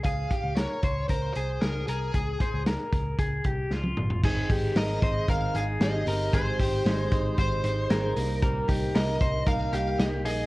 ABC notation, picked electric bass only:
X:1
M:4/4
L:1/16
Q:1/4=115
K:Ab
V:1 name="Picked electric bass" clef=bass
D,,2 z D,,2 z D,,2 D,,2 C,,2 D,,2 C,,2 | D,,2 z D,,2 z D,,2 D,,2 C,,2 D,,2 G,,,2 | A,,,2 A,,,2 A,,,2 A,,,2 A,,,2 A,,,2 A,,,2 G,,,2 | A,,,2 A,,,2 A,,,2 A,,,2 A,,,2 A,,,2 A,,,2 C,,2- |
C,,2 C,,2 C,,2 C,,2 C,,2 C,,2 C,,2 B,,,2 |]